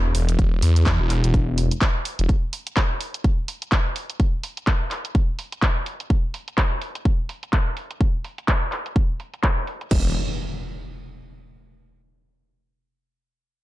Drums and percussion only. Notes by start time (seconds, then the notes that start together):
0.15 open hi-hat
0.29 closed hi-hat
0.39 kick, closed hi-hat
0.62 open hi-hat
0.76 closed hi-hat
0.86 kick, clap, closed hi-hat
1.10 clap, open hi-hat
1.24 closed hi-hat
1.34 kick, closed hi-hat
1.58 open hi-hat
1.71 closed hi-hat
1.82 kick, clap, closed hi-hat
2.05 open hi-hat
2.19 closed hi-hat
2.29 kick, closed hi-hat
2.53 open hi-hat
2.67 closed hi-hat
2.77 kick, clap, closed hi-hat
3.01 open hi-hat
3.14 closed hi-hat
3.24 kick, closed hi-hat
3.48 open hi-hat
3.62 closed hi-hat
3.72 kick, clap, closed hi-hat
3.96 open hi-hat
4.10 closed hi-hat
4.20 kick, closed hi-hat
4.43 open hi-hat
4.57 closed hi-hat
4.67 kick, clap, closed hi-hat
4.91 clap, open hi-hat
5.05 closed hi-hat
5.15 kick, closed hi-hat
5.39 open hi-hat
5.52 closed hi-hat
5.62 kick, clap, closed hi-hat
5.86 open hi-hat
6.00 closed hi-hat
6.10 kick, closed hi-hat
6.34 open hi-hat
6.48 closed hi-hat
6.58 kick, clap, closed hi-hat
6.82 open hi-hat
6.95 closed hi-hat
7.05 kick, closed hi-hat
7.29 open hi-hat
7.43 closed hi-hat
7.53 kick, clap, closed hi-hat
7.77 open hi-hat
7.91 closed hi-hat
8.01 kick, closed hi-hat
8.24 open hi-hat
8.38 closed hi-hat
8.48 kick, clap, closed hi-hat
8.72 clap, open hi-hat
8.86 closed hi-hat
8.96 kick, closed hi-hat
9.20 open hi-hat
9.34 closed hi-hat
9.43 kick, clap, closed hi-hat
9.67 open hi-hat
9.81 closed hi-hat
9.91 kick, crash